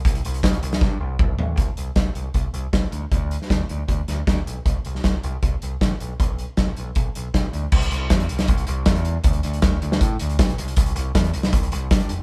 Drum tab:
CC |----------------|----------------|----------------|----------------|
HH |xxxxxxxx--------|x-x-x-x-x-x-x-x-|x-x-x-x-x-x-x-x-|x-x-x-x-x-x-x-x-|
SD |----o--oo-------|----o-------o---|---oo-----o-o---|---oo-------o---|
T2 |------------o---|----------------|----------------|----------------|
FT |--------------o-|----------------|----------------|----------------|
BD |o---o---o---o---|o---o---o---o---|o---o---o---o---|o---o---o---o---|

CC |----------------|x---------------|----------------|----------------|
HH |x-x-x-x-x-x-x-x-|-xx-xxxxxxx-xxx-|xxxxx-x-x-xxxxxx|xxx-xxxxxxx-xxx-|
SD |----o-------o---|----o--o----o---|----o--o----o---|----o--o----o---|
T2 |----------------|----------------|----------------|----------------|
FT |----------------|----------------|----------------|----------------|
BD |o---o---o---o---|o---o---o---o---|o---o---o---o---|o---o---o---o---|